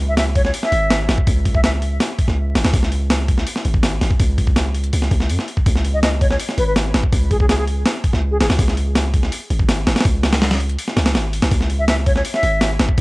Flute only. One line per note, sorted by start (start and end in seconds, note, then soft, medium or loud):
0.08 0.14 E5 medium
0.18 0.23 E5 medium
0.36 0.42 C#5 medium
0.45 0.51 C#5 medium
0.63 1.00 E5 medium
1.55 1.60 E5 medium
1.64 1.70 E5 medium
5.94 6.00 D#5 medium
6.03 6.09 D#5 medium
6.21 6.27 C#5 medium
6.30 6.36 C#5 medium
6.58 6.64 B4 medium
6.67 6.73 B4 medium
7.31 7.37 G#4 medium
7.40 7.46 G#4 medium
7.49 7.55 G#4 medium
7.58 7.64 G#4 medium
8.31 8.37 G#4 medium
8.41 8.46 G#4 medium
11.79 11.85 E5 medium
11.88 11.94 E5 medium
12.06 12.12 C#5 medium
12.16 12.22 C#5 medium
12.34 12.70 E5 medium